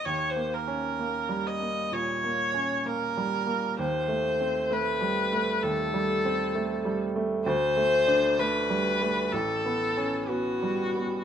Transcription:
0, 0, Header, 1, 3, 480
1, 0, Start_track
1, 0, Tempo, 933126
1, 28, Time_signature, 4, 2, 24, 8
1, 2427, Tempo, 921659
1, 4827, Tempo, 986842
1, 5759, End_track
2, 0, Start_track
2, 0, Title_t, "Viola"
2, 0, Program_c, 0, 41
2, 26, Note_on_c, 0, 73, 70
2, 153, Note_on_c, 0, 72, 61
2, 161, Note_off_c, 0, 73, 0
2, 276, Note_on_c, 0, 70, 63
2, 283, Note_off_c, 0, 72, 0
2, 755, Note_on_c, 0, 75, 68
2, 763, Note_off_c, 0, 70, 0
2, 991, Note_on_c, 0, 73, 72
2, 999, Note_off_c, 0, 75, 0
2, 1472, Note_on_c, 0, 70, 73
2, 1480, Note_off_c, 0, 73, 0
2, 1948, Note_off_c, 0, 70, 0
2, 1951, Note_on_c, 0, 72, 78
2, 2432, Note_on_c, 0, 71, 76
2, 2440, Note_off_c, 0, 72, 0
2, 2902, Note_on_c, 0, 69, 78
2, 2910, Note_off_c, 0, 71, 0
2, 3620, Note_off_c, 0, 69, 0
2, 3849, Note_on_c, 0, 72, 92
2, 4338, Note_on_c, 0, 71, 84
2, 4346, Note_off_c, 0, 72, 0
2, 4823, Note_on_c, 0, 69, 82
2, 4830, Note_off_c, 0, 71, 0
2, 5289, Note_on_c, 0, 66, 75
2, 5297, Note_off_c, 0, 69, 0
2, 5759, Note_off_c, 0, 66, 0
2, 5759, End_track
3, 0, Start_track
3, 0, Title_t, "Grand piano"
3, 0, Program_c, 1, 0
3, 0, Control_c, 1, 64, 127
3, 29, Note_on_c, 1, 39, 46
3, 37, Control_c, 1, 64, 0
3, 115, Control_c, 1, 64, 127
3, 187, Note_on_c, 1, 58, 37
3, 347, Note_on_c, 1, 61, 39
3, 447, Note_off_c, 1, 58, 0
3, 512, Note_on_c, 1, 58, 36
3, 605, Note_off_c, 1, 61, 0
3, 664, Note_on_c, 1, 55, 37
3, 767, Note_off_c, 1, 58, 0
3, 826, Note_on_c, 1, 58, 33
3, 924, Note_off_c, 1, 55, 0
3, 972, Note_off_c, 1, 39, 0
3, 987, Note_on_c, 1, 46, 40
3, 1085, Note_off_c, 1, 58, 0
3, 1152, Note_on_c, 1, 58, 40
3, 1246, Note_off_c, 1, 46, 0
3, 1308, Note_on_c, 1, 61, 43
3, 1408, Note_off_c, 1, 58, 0
3, 1470, Note_on_c, 1, 58, 40
3, 1565, Note_off_c, 1, 61, 0
3, 1632, Note_on_c, 1, 55, 40
3, 1725, Note_off_c, 1, 58, 0
3, 1784, Note_on_c, 1, 58, 42
3, 1885, Note_off_c, 1, 55, 0
3, 1945, Note_off_c, 1, 58, 0
3, 1948, Note_on_c, 1, 39, 52
3, 1955, Control_c, 1, 64, 0
3, 2050, Control_c, 1, 64, 127
3, 2100, Note_on_c, 1, 57, 40
3, 2266, Note_on_c, 1, 60, 44
3, 2359, Note_off_c, 1, 57, 0
3, 2422, Note_on_c, 1, 57, 43
3, 2521, Note_off_c, 1, 60, 0
3, 2580, Note_on_c, 1, 55, 43
3, 2678, Note_off_c, 1, 57, 0
3, 2742, Note_on_c, 1, 57, 46
3, 2837, Note_off_c, 1, 55, 0
3, 2883, Note_off_c, 1, 39, 0
3, 2903, Note_on_c, 1, 39, 47
3, 2999, Note_off_c, 1, 57, 0
3, 3063, Note_on_c, 1, 55, 49
3, 3226, Note_on_c, 1, 60, 50
3, 3319, Note_off_c, 1, 55, 0
3, 3382, Note_on_c, 1, 57, 48
3, 3479, Note_off_c, 1, 60, 0
3, 3539, Note_on_c, 1, 55, 44
3, 3635, Note_off_c, 1, 57, 0
3, 3698, Note_on_c, 1, 57, 51
3, 3792, Note_off_c, 1, 55, 0
3, 3836, Note_off_c, 1, 39, 0
3, 3855, Note_on_c, 1, 38, 60
3, 3856, Note_off_c, 1, 57, 0
3, 3866, Control_c, 1, 64, 0
3, 3949, Control_c, 1, 64, 127
3, 4014, Note_on_c, 1, 57, 46
3, 4173, Note_on_c, 1, 62, 47
3, 4274, Note_off_c, 1, 57, 0
3, 4339, Note_on_c, 1, 57, 49
3, 4435, Note_off_c, 1, 62, 0
3, 4502, Note_on_c, 1, 55, 44
3, 4599, Note_off_c, 1, 57, 0
3, 4665, Note_on_c, 1, 57, 44
3, 4761, Note_off_c, 1, 55, 0
3, 4805, Note_off_c, 1, 38, 0
3, 4827, Note_off_c, 1, 57, 0
3, 4830, Note_on_c, 1, 33, 55
3, 4834, Control_c, 1, 64, 0
3, 4925, Control_c, 1, 64, 127
3, 4987, Note_on_c, 1, 59, 46
3, 5140, Note_on_c, 1, 61, 47
3, 5235, Note_off_c, 1, 59, 0
3, 5297, Note_on_c, 1, 59, 43
3, 5394, Note_off_c, 1, 61, 0
3, 5459, Note_on_c, 1, 55, 39
3, 5554, Note_off_c, 1, 59, 0
3, 5624, Note_on_c, 1, 59, 40
3, 5721, Note_off_c, 1, 55, 0
3, 5759, Note_off_c, 1, 33, 0
3, 5759, Note_off_c, 1, 59, 0
3, 5759, End_track
0, 0, End_of_file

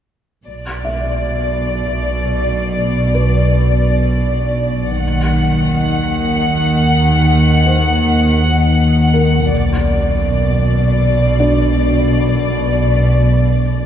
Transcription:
0, 0, Header, 1, 6, 480
1, 0, Start_track
1, 0, Tempo, 500000
1, 13305, End_track
2, 0, Start_track
2, 0, Title_t, "Violin section"
2, 0, Program_c, 0, 48
2, 458, Note_on_c, 0, 74, 28
2, 4790, Note_off_c, 0, 74, 0
2, 4827, Note_on_c, 0, 78, 33
2, 9132, Note_off_c, 0, 78, 0
2, 9134, Note_on_c, 0, 74, 41
2, 13305, Note_off_c, 0, 74, 0
2, 13305, End_track
3, 0, Start_track
3, 0, Title_t, "Felt piano"
3, 0, Program_c, 1, 0
3, 611, Control_c, 1, 64, 127
3, 812, Note_on_c, 1, 76, 25
3, 2970, Note_off_c, 1, 76, 0
3, 3019, Note_on_c, 1, 71, 25
3, 4841, Control_c, 1, 64, 0
3, 4982, Control_c, 1, 64, 127
3, 5150, Note_off_c, 1, 71, 0
3, 7355, Note_on_c, 1, 72, 29
3, 8771, Note_on_c, 1, 70, 34
3, 9149, Control_c, 1, 64, 0
3, 9321, Control_c, 1, 64, 127
3, 9456, Note_off_c, 1, 72, 0
3, 10892, Note_off_c, 1, 70, 0
3, 10938, Note_on_c, 1, 62, 23
3, 10940, Note_on_c, 1, 74, 32
3, 13057, Note_off_c, 1, 62, 0
3, 13058, Note_off_c, 1, 74, 0
3, 13305, End_track
4, 0, Start_track
4, 0, Title_t, "Cello section"
4, 0, Program_c, 2, 48
4, 450, Note_on_c, 2, 47, 28
4, 4786, Note_off_c, 2, 47, 0
4, 4823, Note_on_c, 2, 51, 33
4, 9128, Note_on_c, 2, 47, 38
4, 9130, Note_off_c, 2, 51, 0
4, 13305, Note_off_c, 2, 47, 0
4, 13305, End_track
5, 0, Start_track
5, 0, Title_t, "Double bass section"
5, 0, Program_c, 3, 48
5, 445, Note_on_c, 3, 35, 29
5, 4784, Note_off_c, 3, 35, 0
5, 4827, Note_on_c, 3, 39, 36
5, 9125, Note_on_c, 3, 35, 42
5, 9132, Note_off_c, 3, 39, 0
5, 13305, Note_off_c, 3, 35, 0
5, 13305, End_track
6, 0, Start_track
6, 0, Title_t, "Synth drone"
6, 0, Program_c, 4, 95
6, 447, Note_on_c, 4, 35, 47
6, 4785, Note_off_c, 4, 35, 0
6, 4829, Note_on_c, 4, 39, 47
6, 9133, Note_off_c, 4, 39, 0
6, 9137, Note_on_c, 4, 35, 51
6, 13305, Note_off_c, 4, 35, 0
6, 13305, End_track
0, 0, End_of_file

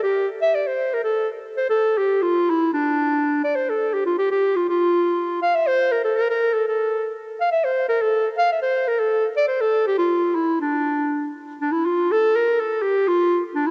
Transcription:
0, 0, Header, 1, 2, 480
1, 0, Start_track
1, 0, Key_signature, -1, "minor"
1, 0, Tempo, 500417
1, 655, Time_signature, 2, 2, 24, 8
1, 6408, Tempo, 491803
1, 10248, Tempo, 484653
1, 13309, End_track
2, 0, Start_track
2, 0, Title_t, "Clarinet"
2, 0, Program_c, 0, 71
2, 29, Note_on_c, 0, 67, 82
2, 264, Note_off_c, 0, 67, 0
2, 399, Note_on_c, 0, 76, 111
2, 525, Note_on_c, 0, 74, 81
2, 540, Note_off_c, 0, 76, 0
2, 643, Note_on_c, 0, 72, 91
2, 657, Note_off_c, 0, 74, 0
2, 898, Note_on_c, 0, 70, 78
2, 913, Note_off_c, 0, 72, 0
2, 996, Note_off_c, 0, 70, 0
2, 1001, Note_on_c, 0, 69, 83
2, 1234, Note_off_c, 0, 69, 0
2, 1507, Note_on_c, 0, 72, 81
2, 1617, Note_off_c, 0, 72, 0
2, 1629, Note_on_c, 0, 69, 98
2, 1895, Note_on_c, 0, 67, 82
2, 1909, Note_off_c, 0, 69, 0
2, 2132, Note_on_c, 0, 65, 97
2, 2147, Note_off_c, 0, 67, 0
2, 2395, Note_on_c, 0, 64, 96
2, 2410, Note_off_c, 0, 65, 0
2, 2611, Note_off_c, 0, 64, 0
2, 2624, Note_on_c, 0, 62, 83
2, 3287, Note_off_c, 0, 62, 0
2, 3300, Note_on_c, 0, 74, 80
2, 3410, Note_on_c, 0, 72, 69
2, 3424, Note_off_c, 0, 74, 0
2, 3545, Note_on_c, 0, 69, 78
2, 3559, Note_off_c, 0, 72, 0
2, 3774, Note_on_c, 0, 67, 74
2, 3789, Note_off_c, 0, 69, 0
2, 3888, Note_off_c, 0, 67, 0
2, 3894, Note_on_c, 0, 65, 78
2, 4010, Note_off_c, 0, 65, 0
2, 4015, Note_on_c, 0, 67, 84
2, 4126, Note_off_c, 0, 67, 0
2, 4132, Note_on_c, 0, 67, 89
2, 4376, Note_on_c, 0, 65, 75
2, 4390, Note_off_c, 0, 67, 0
2, 4495, Note_off_c, 0, 65, 0
2, 4500, Note_on_c, 0, 65, 91
2, 5178, Note_off_c, 0, 65, 0
2, 5199, Note_on_c, 0, 77, 98
2, 5325, Note_on_c, 0, 76, 88
2, 5339, Note_off_c, 0, 77, 0
2, 5437, Note_on_c, 0, 72, 105
2, 5452, Note_off_c, 0, 76, 0
2, 5675, Note_on_c, 0, 70, 77
2, 5689, Note_off_c, 0, 72, 0
2, 5789, Note_off_c, 0, 70, 0
2, 5795, Note_on_c, 0, 69, 74
2, 5917, Note_on_c, 0, 70, 99
2, 5932, Note_off_c, 0, 69, 0
2, 6037, Note_off_c, 0, 70, 0
2, 6042, Note_on_c, 0, 70, 91
2, 6272, Note_on_c, 0, 69, 78
2, 6286, Note_off_c, 0, 70, 0
2, 6398, Note_off_c, 0, 69, 0
2, 6405, Note_on_c, 0, 69, 84
2, 6857, Note_off_c, 0, 69, 0
2, 7118, Note_on_c, 0, 77, 90
2, 7221, Note_off_c, 0, 77, 0
2, 7227, Note_on_c, 0, 76, 90
2, 7348, Note_on_c, 0, 72, 86
2, 7363, Note_off_c, 0, 76, 0
2, 7579, Note_off_c, 0, 72, 0
2, 7585, Note_on_c, 0, 70, 95
2, 7714, Note_on_c, 0, 69, 83
2, 7729, Note_off_c, 0, 70, 0
2, 7963, Note_off_c, 0, 69, 0
2, 8069, Note_on_c, 0, 77, 109
2, 8191, Note_off_c, 0, 77, 0
2, 8203, Note_on_c, 0, 76, 79
2, 8298, Note_off_c, 0, 76, 0
2, 8304, Note_on_c, 0, 72, 92
2, 8553, Note_on_c, 0, 70, 85
2, 8567, Note_off_c, 0, 72, 0
2, 8668, Note_on_c, 0, 69, 77
2, 8683, Note_off_c, 0, 70, 0
2, 8920, Note_off_c, 0, 69, 0
2, 9033, Note_on_c, 0, 74, 101
2, 9132, Note_off_c, 0, 74, 0
2, 9138, Note_on_c, 0, 72, 77
2, 9267, Note_on_c, 0, 69, 93
2, 9282, Note_off_c, 0, 72, 0
2, 9518, Note_off_c, 0, 69, 0
2, 9525, Note_on_c, 0, 67, 84
2, 9626, Note_off_c, 0, 67, 0
2, 9632, Note_on_c, 0, 65, 81
2, 9990, Note_on_c, 0, 64, 86
2, 10005, Note_off_c, 0, 65, 0
2, 10237, Note_off_c, 0, 64, 0
2, 10243, Note_on_c, 0, 62, 83
2, 10929, Note_off_c, 0, 62, 0
2, 11237, Note_on_c, 0, 62, 81
2, 11342, Note_on_c, 0, 64, 77
2, 11356, Note_off_c, 0, 62, 0
2, 11477, Note_on_c, 0, 65, 90
2, 11492, Note_off_c, 0, 64, 0
2, 11733, Note_on_c, 0, 69, 106
2, 11748, Note_off_c, 0, 65, 0
2, 11977, Note_on_c, 0, 70, 94
2, 11992, Note_off_c, 0, 69, 0
2, 12214, Note_on_c, 0, 69, 83
2, 12229, Note_off_c, 0, 70, 0
2, 12434, Note_on_c, 0, 67, 95
2, 12449, Note_off_c, 0, 69, 0
2, 12690, Note_on_c, 0, 65, 104
2, 12705, Note_off_c, 0, 67, 0
2, 13028, Note_off_c, 0, 65, 0
2, 13154, Note_on_c, 0, 62, 87
2, 13269, Note_on_c, 0, 64, 87
2, 13284, Note_off_c, 0, 62, 0
2, 13309, Note_off_c, 0, 64, 0
2, 13309, End_track
0, 0, End_of_file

